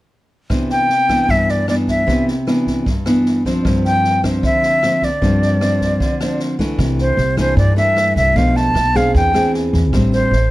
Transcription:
0.50 nylon-string guitar C3 E3 B3 D4, kick, cross-stick, snare
0.70 flute G5, snare
0.89 snare
1.09 nylon-string guitar E3 B3 D4, kick, cross-stick, snare
1.29 nylon-string guitar G2, flute E5, kick, snare
1.48 flute D5, snare
1.68 nylon-string guitar E3 B3 D4, flute D5, cross-stick, snare
1.88 flute E5, kick, snare
2.07 nylon-string guitar C3 E3 B3 D4, kick, snare
2.28 snare
2.47 nylon-string guitar E3 B3 D4, cross-stick, snare
2.67 kick, snare
2.86 nylon-string guitar G2, kick, snare
3.06 nylon-string guitar E3 B3 D4, cross-stick, snare
3.26 snare
3.45 nylon-string guitar F3 C4 D4, kick, snare
3.65 nylon-string guitar G2, kick, cross-stick, snare
3.85 flute G5, snare
4.04 snare
4.23 nylon-string guitar F3 C4 D4, kick, cross-stick, snare
4.43 nylon-string guitar D3, flute E5, kick, snare
4.63 snare
4.83 nylon-string guitar F3 C4 D4, cross-stick, snare
5.02 flute D5, kick, snare
5.21 nylon-string guitar G2 F3 C4 D4, kick, snare
5.42 snare
5.61 nylon-string guitar F3 C4 D4, cross-stick, snare
5.81 kick, snare
6.00 nylon-string guitar D3, kick, snare
6.20 nylon-string guitar F3 C4 D4, cross-stick, snare
6.39 snare
6.59 nylon-string guitar E3 A3 D4, kick, snare
6.78 upright bass C2, nylon-string guitar C3, kick, cross-stick, snare
6.98 flute C5, snare
7.17 upright bass C2, snare
7.37 nylon-string guitar E3 A3 D4, flute C5, kick, cross-stick, snare
7.57 nylon-string guitar G2, upright bass G2, flute D5, kick, snare
7.76 nylon-string guitar E3 A3 D4, flute E5, snare
7.97 cross-stick, snare
8.16 upright bass C2, flute E5, kick, snare
8.36 upright bass B1, nylon-string guitar B2 F3 A3 D4, flute F5, kick, snare
8.56 flute A5, snare
8.75 upright bass B1, cross-stick, snare
8.94 nylon-string guitar C4 D4 G#4, flute F5, kick, snare
9.14 upright bass E2, nylon-string guitar E3, flute G5, kick, snare
9.34 nylon-string guitar C4 D4 G#4, cross-stick, snare
9.54 snare
9.73 upright bass E2, kick, snare
9.93 upright bass A1, nylon-string guitar A2 G3 C4 D4, kick, cross-stick, snare
10.12 flute C5, snare
10.31 upright bass A1, snare

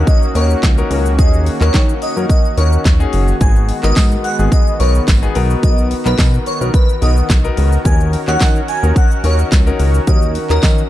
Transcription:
Already playing: analog synth pad D#3 A#3 C#4 F#4, grand piano C#4 D#4 F#4 A#4
0.07 digital synth lead D#5, kick, closed hi-hat, shaker
0.23 shaker
0.35 analog synth bass D#2, grand piano C#4 D#4 F#4 A#4, digital synth lead C#5, open hi-hat, shaker
0.50 shaker
0.63 analog synth bass C#2, kick, snare, clap, closed hi-hat, shaker
0.78 grand piano C#4 D#4 F#4 A#4, shaker
0.91 analog synth bass C#2, open hi-hat, shaker
1.06 shaker
1.19 analog synth bass D#2, grand piano C#4 D#4 F#4 G#4, digital synth lead D#5, kick, closed hi-hat, shaker
1.33 shaker
1.46 open hi-hat, shaker
1.61 analog synth bass D#2, grand piano C#4 D#4 F#4 A#4, digital synth lead C#5, clap, shaker
1.74 analog synth bass D#3, kick, snare, clap, closed hi-hat, shaker
1.89 shaker
2.02 digital synth lead D#5, open hi-hat, shaker
2.16 analog synth bass F#2, grand piano C#4 D#4 F#4 A#4, shaker
2.29 digital synth lead D#5, kick, closed hi-hat, shaker
2.45 shaker
2.57 analog synth bass D#2, grand piano C#4 D#4 F#4 A#4, digital synth lead C#5, open hi-hat, shaker
2.72 shaker
2.85 analog synth bass D#2, kick, snare, clap, closed hi-hat, shaker
3.00 grand piano C#4 D#4 F#4 G#4, shaker
3.13 analog synth bass F#1, open hi-hat, shaker
3.28 shaker
3.41 analog synth bass G#1, analog synth pad G#3 B3, grand piano B3 D#4 F#4 G#4, digital synth lead G#5, kick, closed hi-hat, shaker
3.56 shaker
3.69 open hi-hat, shaker
3.83 analog synth bass G#1, grand piano B3 D#4 F#4 A#4, digital synth lead D#5, clap, shaker
3.96 analog synth bass G#2, kick, snare, clap, closed hi-hat, tambourine, shaker
4.11 shaker
4.24 digital synth lead F#5, open hi-hat, shaker
4.39 analog synth bass G#1, grand piano B3 D#4 F#4 G#4, shaker
4.52 digital synth lead D#5, kick, closed hi-hat, shaker
4.67 shaker
4.79 analog synth bass B1, grand piano B3 D#4 F#4 A#4, digital synth lead C#5, open hi-hat, shaker
4.95 shaker
5.08 analog synth bass G#1, kick, snare, clap, closed hi-hat, tambourine, shaker
5.22 grand piano B3 D#4 F#4 G#4, shaker
5.35 analog synth bass B1, grand piano B3 D#4 F#4 A#4, analog synth pad A#4, open hi-hat, shaker
5.50 shaker
5.63 analog synth bass B1, digital synth lead D#5, kick, closed hi-hat, shaker
5.78 shaker
5.91 open hi-hat, shaker
6.05 analog synth bass B1, grand piano B3 D#4 F#4 A#4, digital synth lead B4, clap, shaker
6.18 analog synth bass B2, kick, snare, clap, closed hi-hat, tambourine, shaker
6.34 shaker
6.46 digital synth lead C#5, open hi-hat, shaker
6.61 analog synth bass B1, grand piano B3 D#4 F#4 A#4, shaker
6.74 digital synth lead B4, kick, closed hi-hat, shaker
6.89 shaker
7.02 analog synth bass B1, grand piano B3 D#4 F#4 A#4, digital synth lead D#5, open hi-hat, shaker
7.17 shaker
7.30 analog synth bass B1, kick, snare, clap, closed hi-hat, tambourine, shaker
7.44 grand piano B3 D#4 F#4 A#4, shaker
7.57 analog synth bass C#2, open hi-hat, shaker
7.72 shaker
7.85 analog synth bass D#2, grand piano C#4 D#4 F#4 A#4, analog synth pad C#4 F#4, digital synth lead G#5, kick, closed hi-hat, shaker
8.00 shaker
8.13 open hi-hat, shaker
8.27 analog synth bass D#2, grand piano C#4 D#4 F#4 C#5, digital synth lead F#5, clap, shaker
8.40 analog synth bass D#3, kick, snare, clap, closed hi-hat, tambourine, shaker
8.56 shaker
8.68 digital synth lead G#5, open hi-hat, shaker
8.83 analog synth bass D#2, grand piano C#4 D#4 F#4 A#4, shaker
8.96 digital synth lead F#5, kick, closed hi-hat, shaker
9.11 shaker
9.24 analog synth bass D#2, grand piano C#4 D#4 F#4 A#4, digital synth lead C#5, open hi-hat, shaker
9.39 shaker
9.52 analog synth bass C#2, kick, snare, clap, closed hi-hat, tambourine, shaker
9.66 grand piano C#4 D#4 F#4 A#4, shaker
9.80 analog synth bass C#2, open hi-hat, shaker
9.94 shaker
10.07 analog synth bass D#2, grand piano C#4 D#4 F#4 A#4, digital synth lead D#5, kick, closed hi-hat, shaker
10.22 shaker
10.35 open hi-hat, shaker
10.50 analog synth bass D#2, grand piano C#4 D#4 F#4 A#4, digital synth lead A#4, clap, shaker
10.63 analog synth bass D#3, kick, snare, clap, closed hi-hat, tambourine, shaker
10.78 shaker

